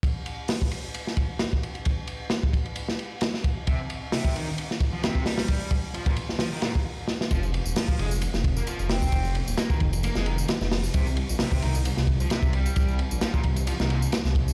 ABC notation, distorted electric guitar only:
X:1
M:4/4
L:1/16
Q:"Swing 16ths" 1/4=132
K:Fm
V:1 name="Distorted electric guitar" clef=bass
z16 | z16 | C, z3 C, C, E, z4 F, C,2 G,2- | G,2 z2 F, B,, z2 F, E, B,, z4 z |
F, z3 F, F, A, z4 B, F,2 C2- | C2 z2 B, E, z2 B, A, E, z4 z | C, z3 C, C, E, z4 F, C,2 G,2- | G,2 z2 F, B,, z2 F, E, B,, z4 z |]